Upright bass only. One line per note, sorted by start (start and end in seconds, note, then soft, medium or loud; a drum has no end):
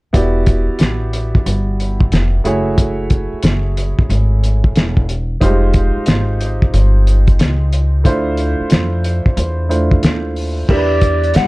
0.14 0.66 E1 medium
0.69 muted upright bass stroke soft
0.80 1.32 A1 medium
1.35 muted upright bass stroke soft
1.46 2.09 G1 medium
2.12 2.43 F1 medium
2.45 3.29 F#1 medium
3.33 muted upright bass stroke soft
3.44 3.96 F#1 medium
3.99 muted upright bass stroke soft
4.09 4.72 G#1 medium
4.76 5.38 E1 medium
5.42 5.94 F1 medium
5.96 muted upright bass stroke soft
6.08 6.70 G#1 medium
6.74 7.36 G1 medium
7.40 8.02 C#2 medium
8.05 8.57 D2 medium
8.60 muted upright bass stroke soft
8.71 9.23 F2 medium
9.26 muted upright bass stroke soft
9.37 10.00 E2 medium
10.03 10.66 D#2 medium
10.69 11.32 E2 medium
11.35 11.47 G2 medium